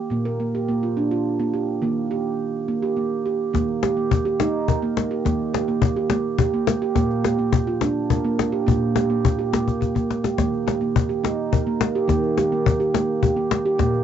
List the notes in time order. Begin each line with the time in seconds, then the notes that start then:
Already playing: G4
0.10 A#2 A#3
0.25 A#4
0.40 A#3
0.55 G4
0.69 A#3
0.83 F4
0.97 D4
1.11 F4
1.40 A#3
1.54 G4
1.82 D#3 A#3
2.11 G4
2.68 A#3
2.82 G4
2.97 A#3
3.26 G4
3.53 D#3 A#3, cajon bass, cajon slap
3.69 cajon slap
3.83 G4, cajon slap
3.97 A#3, cajon slap
4.11 cajon bass
4.25 G4, cajon slap
4.40 D#4, cajon slap
4.68 A#4, cajon bass
4.82 A#3
4.97 cajon slap
5.11 G4
5.25 D#3 A#3, cajon bass, cajon slap
5.39 cajon slap
5.54 G4, cajon slap
5.68 A#3, cajon slap
5.82 cajon bass
5.96 G4, cajon slap
6.10 A#3, cajon slap
6.38 G4, cajon bass
6.54 A#3
6.67 cajon slap
6.82 G4
6.96 A#2 A#3, cajon bass, cajon slap
7.11 cajon slap
7.24 G4, cajon slap
7.38 A#3, cajon slap
7.53 cajon bass
7.67 F4, cajon slap
7.81 D4, cajon slap
8.10 A#4, cajon bass
8.25 A#3
8.39 cajon slap
8.52 G4
8.66 A#2 A#3, cajon bass
8.96 G4, cajon slap
9.10 A#3
9.25 cajon bass
9.39 G4, cajon slap
9.53 A#3, cajon slap
9.68 cajon bass
9.81 G4, cajon bass
9.95 A#3, cajon bass
10.11 cajon slap
10.24 G4, cajon slap
10.38 D#3 A#3, cajon bass, cajon slap
10.54 cajon slap
10.67 G4, cajon slap
10.81 A#3, cajon slap
10.96 cajon bass
11.09 G4, cajon slap
11.24 D#4, cajon slap
11.52 A#4, cajon bass
11.67 A#3
11.81 cajon slap
11.95 G4
12.08 D#3 A#3, cajon bass, cajon slap
12.24 cajon slap
12.38 G4, cajon slap
12.52 A#3, cajon slap
12.66 cajon bass
12.80 G4, cajon slap
12.94 A#3, cajon slap
13.23 G4, cajon bass
13.36 A#3
13.51 cajon slap
13.65 G4
13.78 A#2 A#3, cajon bass, cajon slap
13.94 cajon slap